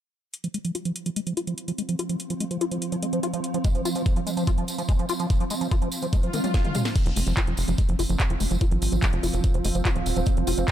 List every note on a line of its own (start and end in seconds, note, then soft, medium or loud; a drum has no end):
0.34 6.94 F3 medium
0.34 6.94 C4 medium
0.34 closed hi-hat medium
0.44 0.48 F3 medium
0.44 closed hi-hat medium
0.54 0.58 G#3 medium
0.54 closed hi-hat medium
0.65 0.71 F3 medium
0.65 closed hi-hat medium
0.75 0.79 F4 loud
0.75 closed hi-hat medium
0.85 0.92 F3 medium
0.85 closed hi-hat medium
0.96 closed hi-hat medium
1.06 1.10 F3 medium
1.06 closed hi-hat medium
1.16 1.20 G#3 medium
1.16 closed hi-hat medium
1.27 1.33 F3 medium
1.27 closed hi-hat medium
1.37 1.41 F4 loud
1.37 closed hi-hat medium
1.47 1.54 F3 medium
1.47 closed hi-hat medium
1.58 closed hi-hat medium
1.68 1.72 F3 medium
1.68 closed hi-hat medium
1.78 1.82 G#3 medium
1.78 closed hi-hat medium
1.89 1.96 F3 medium
1.89 closed hi-hat medium
1.99 2.03 F4 loud
1.99 closed hi-hat medium
2.09 2.16 F3 medium
2.09 closed hi-hat medium
2.20 closed hi-hat medium
2.30 2.34 F3 medium
2.30 closed hi-hat medium
2.40 2.45 G#3 medium
2.40 closed hi-hat medium
2.51 2.58 F3 medium
2.51 closed hi-hat medium
2.61 2.65 F4 loud
2.61 closed hi-hat medium
2.71 2.78 F3 medium
2.71 closed hi-hat medium
2.82 closed hi-hat medium
2.92 2.96 F3 medium
2.92 closed hi-hat soft
3.02 3.07 G#3 medium
3.02 closed hi-hat medium
3.13 3.20 F3 medium
3.13 closed hi-hat soft
3.23 3.27 F4 loud
3.23 closed hi-hat medium
3.33 3.40 F3 medium
3.33 closed hi-hat soft
3.44 closed hi-hat medium
3.54 3.58 F3 medium
3.54 closed hi-hat medium
3.64 3.69 G#3 medium
3.64 kick loud
3.64 closed hi-hat medium
3.64 tambourine soft
3.75 3.82 F3 medium
3.75 closed hi-hat medium
3.85 3.89 F4 loud
3.85 closed hi-hat medium
3.85 tambourine loud
3.95 4.02 F3 medium
3.95 closed hi-hat soft
3.95 tambourine medium
4.06 kick loud
4.06 closed hi-hat medium
4.06 tambourine soft
4.16 4.20 F3 medium
4.16 closed hi-hat soft
4.27 4.31 G#3 medium
4.27 closed hi-hat medium
4.27 tambourine medium
4.37 4.44 F3 medium
4.37 closed hi-hat medium
4.37 tambourine medium
4.47 4.51 F4 loud
4.47 kick loud
4.47 closed hi-hat medium
4.47 tambourine soft
4.58 4.64 F3 medium
4.58 closed hi-hat medium
4.68 closed hi-hat medium
4.68 tambourine medium
4.78 4.82 F3 medium
4.78 closed hi-hat medium
4.78 tambourine medium
4.88 4.93 G#3 medium
4.88 kick loud
4.88 closed hi-hat medium
4.88 tambourine soft
4.99 5.06 F3 medium
4.99 closed hi-hat soft
5.09 5.13 F4 loud
5.09 closed hi-hat medium
5.09 tambourine medium
5.19 5.27 F3 medium
5.19 closed hi-hat soft
5.19 tambourine medium
5.30 kick loud
5.30 closed hi-hat medium
5.30 tambourine soft
5.40 5.44 F3 medium
5.40 closed hi-hat medium
5.50 5.55 G#3 medium
5.50 closed hi-hat medium
5.50 tambourine loud
5.61 5.68 F3 medium
5.61 closed hi-hat soft
5.61 tambourine medium
5.71 5.76 F4 loud
5.71 kick loud
5.71 closed hi-hat medium
5.71 tambourine soft
5.82 5.89 F3 medium
5.82 closed hi-hat soft
5.92 closed hi-hat medium
5.92 tambourine medium
6.02 6.07 F3 medium
6.02 closed hi-hat soft
6.02 tambourine soft
6.13 6.17 G#3 medium
6.13 kick loud
6.13 closed hi-hat medium
6.13 tambourine soft
6.13 swell medium
6.23 6.30 F3 medium
6.23 closed hi-hat medium
6.33 6.40 D#3 medium
6.33 closed hi-hat medium
6.33 high tom medium
6.33 tambourine medium
6.44 6.54 F#3 medium
6.44 closed hi-hat medium
6.44 high tom medium
6.44 tambourine medium
6.54 kick loud
6.54 snare medium
6.54 closed hi-hat medium
6.54 tambourine soft
6.65 6.71 G#3 medium
6.65 closed hi-hat soft
6.65 mid tom medium
6.75 6.87 G#3 loud
6.75 closed hi-hat medium
6.75 mid tom medium
6.75 tambourine medium
6.85 6.95 C4 medium
6.85 snare medium
6.85 closed hi-hat soft
6.85 tambourine medium
6.96 10.71 F3 medium
6.96 10.71 C4 medium
6.96 10.71 F4 medium
6.96 kick loud
6.96 closed hi-hat medium
6.96 crash medium
6.96 tambourine soft
7.01 10.71 C5 medium
7.06 7.13 F1 medium
7.06 7.10 F3 medium
7.06 closed hi-hat medium
7.16 7.23 F1 loud
7.16 7.20 G#3 medium
7.16 open hi-hat loud
7.16 tambourine medium
7.22 10.71 F5 medium
7.26 7.34 F1 loud
7.26 7.33 F3 medium
7.26 closed hi-hat medium
7.26 tambourine medium
7.37 7.41 F4 loud
7.37 kick loud
7.37 clap loud
7.37 closed hi-hat medium
7.47 7.54 F1 medium
7.47 7.54 F3 medium
7.47 closed hi-hat medium
7.57 7.65 F1 loud
7.57 open hi-hat medium
7.57 tambourine medium
7.67 7.75 F1 medium
7.67 7.72 F3 medium
7.67 closed hi-hat medium
7.67 tambourine soft
7.78 7.82 G#3 medium
7.78 kick loud
7.78 closed hi-hat medium
7.78 tambourine soft
7.89 7.96 F#1 medium
7.89 7.96 F3 medium
7.89 closed hi-hat medium
7.99 8.06 F#1 loud
7.99 8.03 F4 loud
7.99 open hi-hat loud
7.99 tambourine medium
8.09 8.16 F#1 medium
8.09 8.16 F3 medium
8.09 closed hi-hat medium
8.09 tambourine medium
8.19 kick loud
8.19 clap loud
8.19 closed hi-hat medium
8.19 tambourine soft
8.30 8.37 F1 medium
8.30 8.34 F3 medium
8.30 closed hi-hat medium
8.40 8.48 F1 loud
8.40 8.44 G#3 medium
8.40 open hi-hat medium
8.40 tambourine medium
8.51 8.58 F1 loud
8.51 8.58 F3 medium
8.51 closed hi-hat medium
8.51 tambourine soft
8.61 8.65 F4 loud
8.61 kick loud
8.61 closed hi-hat medium
8.61 tambourine soft
8.71 8.79 G#1 medium
8.71 8.78 F3 medium
8.71 closed hi-hat medium
8.82 8.89 G#1 loud
8.82 open hi-hat loud
8.82 tambourine medium
8.92 8.99 G#1 medium
8.92 8.96 F3 medium
8.92 closed hi-hat soft
8.92 tambourine medium
9.02 9.07 G#3 medium
9.02 kick loud
9.02 clap loud
9.02 closed hi-hat medium
9.02 tambourine soft
9.13 9.20 F1 medium
9.13 9.20 F3 medium
9.13 closed hi-hat medium
9.23 9.30 F1 loud
9.23 9.27 F4 loud
9.23 open hi-hat medium
9.23 tambourine medium
9.34 9.41 F1 medium
9.34 9.40 F3 medium
9.34 closed hi-hat medium
9.34 tambourine medium
9.44 kick loud
9.44 closed hi-hat medium
9.44 tambourine soft
9.54 9.61 F1 medium
9.54 9.58 F3 medium
9.54 closed hi-hat medium
9.64 9.72 F1 loud
9.64 9.69 G#3 medium
9.64 open hi-hat loud
9.64 tambourine medium
9.75 9.82 F1 medium
9.75 9.82 F3 medium
9.75 closed hi-hat medium
9.75 tambourine medium
9.85 9.89 F4 loud
9.85 kick loud
9.85 clap loud
9.85 closed hi-hat medium
9.85 tambourine soft
9.96 10.03 D#1 medium
9.96 10.02 F3 medium
9.96 closed hi-hat medium
10.06 10.13 D#1 loud
10.06 open hi-hat medium
10.06 tambourine medium
10.16 10.23 D#1 medium
10.16 10.20 F3 medium
10.16 closed hi-hat medium
10.16 tambourine medium
10.26 10.31 G#3 medium
10.26 kick loud
10.26 closed hi-hat medium
10.26 tambourine soft
10.37 10.44 F1 medium
10.37 10.44 F3 medium
10.37 closed hi-hat medium
10.47 10.54 F1 loud
10.47 10.51 F4 loud
10.47 open hi-hat loud
10.47 tambourine loud
10.57 10.65 F1 loud
10.57 10.64 F3 medium
10.57 tambourine medium
10.68 kick loud
10.68 clap loud
10.68 closed hi-hat medium
10.68 tambourine soft